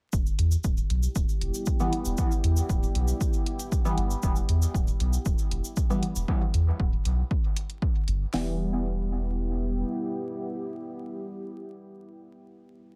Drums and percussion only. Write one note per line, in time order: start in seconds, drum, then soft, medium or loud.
0.13 kick loud
0.13 cabasa medium
0.26 cabasa soft
0.39 closed hi-hat medium
0.52 cabasa medium
0.64 kick loud
0.64 cabasa medium
0.77 cabasa soft
0.90 closed hi-hat medium
1.03 cabasa medium
1.15 kick loud
1.15 cabasa medium
1.29 cabasa soft
1.41 closed hi-hat medium
1.54 cabasa medium
1.66 kick loud
1.66 cabasa medium
1.80 cabasa soft
1.93 closed hi-hat medium
2.05 cabasa medium
2.17 kick loud
2.17 cabasa medium
2.32 cabasa soft
2.44 closed hi-hat medium
2.57 cabasa medium
2.70 kick loud
2.70 cabasa medium
2.83 cabasa soft
2.95 closed hi-hat medium
3.08 cabasa medium
3.21 kick loud
3.21 cabasa medium
3.33 cabasa soft
3.46 closed hi-hat medium
3.59 closed hi-hat soft
3.59 cabasa medium
3.72 kick loud
3.72 cabasa medium
3.85 cabasa soft
3.98 closed hi-hat medium
4.11 cabasa medium
4.23 kick loud
4.23 cabasa medium
4.36 cabasa soft
4.49 closed hi-hat medium
4.62 cabasa medium
4.75 kick loud
4.75 cabasa medium
4.87 cabasa soft
5.00 closed hi-hat medium
5.13 cabasa medium
5.25 kick loud
5.25 cabasa medium
5.38 cabasa soft
5.51 closed hi-hat medium
5.65 cabasa medium
5.76 kick loud
5.76 cabasa medium
5.91 cabasa soft
6.03 closed hi-hat medium
6.16 cabasa medium
6.28 kick loud
6.54 closed hi-hat medium
6.80 kick loud
7.05 closed hi-hat medium
7.31 kick loud
7.57 closed hi-hat medium
7.70 closed hi-hat soft
7.82 kick loud
8.08 closed hi-hat medium
8.34 snare loud
8.34 open hi-hat medium